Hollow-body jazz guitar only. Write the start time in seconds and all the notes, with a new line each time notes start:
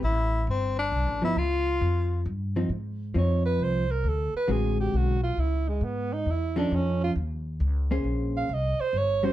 1.22 F3 B3 D#4
2.56 F3 C4 D#4
3.14 F3 C4 D#4
4.48 D3 G#3 C4 F#4
6.56 F3 C#4 D#4 A4
7.91 A#3 C#4 G#4 C5
9.23 G3 C#4 F#4